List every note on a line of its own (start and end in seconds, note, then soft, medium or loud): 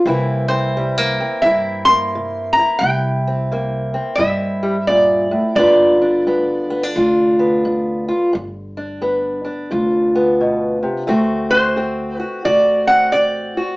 0.05 1.18 C2 medium
0.05 0.69 C3 medium
0.05 2.79 E3 medium
0.05 0.76 A#3 medium
0.05 0.49 C4 medium
0.05 1.45 E4 medium
0.48 1.20 C4 medium
0.48 1.39 C5 medium
0.77 1.39 C3 medium
0.77 0.98 G3 medium
0.98 1.87 A#3 medium
1.20 2.80 C4 medium
1.42 2.56 G2 medium
1.42 2.08 C3 medium
1.42 2.56 E4 medium
1.42 1.87 E5 medium
1.85 2.79 A#3 medium
1.85 2.51 C6 loud
2.15 2.78 C3 medium
2.53 2.81 A#5 loud
2.59 4.18 E4 medium
2.79 3.94 C2 medium
2.79 4.14 G5 medium
2.83 3.46 C3 medium
3.27 3.93 C4 medium
3.52 4.15 C3 medium
3.52 4.62 A#3 medium
3.94 5.55 C4 medium
4.16 5.31 G2 medium
4.16 4.83 C3 medium
4.16 5.58 E4 medium
4.16 4.87 E5 medium
4.63 4.76 G3 medium
4.87 5.31 A#2 medium
4.87 5.55 D5 medium
5.31 5.57 A2 medium
5.55 6.69 G1 medium
5.55 6.21 G2 medium
5.55 11.06 D3 medium
5.55 6.27 B3 medium
5.55 6.01 D4 medium
5.55 6.91 D5 medium
5.60 6.97 F4 medium
6.02 6.70 D4 medium
6.27 6.90 G2 medium
6.27 6.69 B3 medium
6.70 6.83 B3 medium
6.83 8.34 D4 soft
6.96 8.08 D2 medium
6.96 7.59 G2 medium
6.96 8.07 F4 medium
7.39 8.31 B3 medium
7.65 8.28 G2 medium
8.08 8.31 F4 medium
8.33 9.46 G1 medium
8.33 8.97 G2 medium
8.77 9.44 D4 medium
9.01 9.65 G2 medium
9.01 10.13 B3 medium
9.45 11.08 D4 medium
9.71 10.83 D2 medium
9.71 10.34 G2 medium
9.71 11.06 F4 medium
10.15 11.06 B3 medium
10.41 10.82 B2 medium
10.83 11.08 C3 medium
11.07 12.20 D2 medium
11.07 11.71 D3 medium
11.07 13.77 A3 medium
11.07 11.77 C4 medium
11.07 11.52 F#4 medium
11.51 12.19 F#4 medium
11.51 12.16 C5 medium
11.76 12.40 D3 medium
11.76 12.88 C4 medium
12.16 12.45 B4 medium
12.20 12.45 F#4 medium
12.45 13.57 A1 medium
12.45 13.08 D3 medium
12.45 13.56 F#4 medium
12.45 12.89 D5 medium
12.87 13.77 C4 medium
12.87 13.14 F#5 medium
13.12 13.77 D3 medium
13.12 13.77 D5 medium
13.57 13.77 F#4 medium